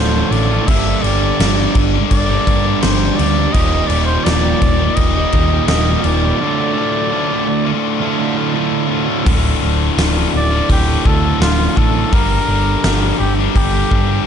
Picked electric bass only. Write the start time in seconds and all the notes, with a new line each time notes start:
Already playing: D1
0.31 A1
0.68 G1
1.03 G1
1.40 G1
1.76 G1
2.11 G1
2.47 G2
2.83 G1
3.19 D2
3.54 D#1
3.90 D#1
4.26 D#1
4.62 D#1
4.97 D#1
5.33 D#2
5.68 D#1
6.04 D#1
9.27 D1
9.63 D1
9.98 D1
10.34 D1
10.70 D1
11.06 D2
11.40 D1
11.77 A1
12.12 G1
12.48 G1
12.84 G1
13.20 G1
13.56 G1
13.92 G2